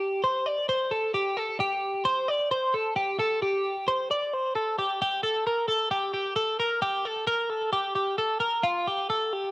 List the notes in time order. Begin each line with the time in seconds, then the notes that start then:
Already playing: G4
0.24 C5
0.46 D5
0.69 C5
0.91 A4
1.14 G4
1.37 A4
1.60 G4
2.05 C5
2.28 D5
2.51 C5
2.74 A4
2.96 G4
3.19 A4
3.42 G4
3.88 C5
4.11 D5
4.33 C5
4.55 A4
4.78 G4
5.02 G4
5.23 A4
5.47 A#4
5.68 A4
5.91 G4
6.14 G4
6.36 A4
6.60 A#4
6.82 G4
7.05 A4
7.27 A#4
7.50 A4
7.73 G4
7.95 G4
8.18 A4
8.40 A#4
8.63 F4
8.87 G4
9.10 A4
9.33 G4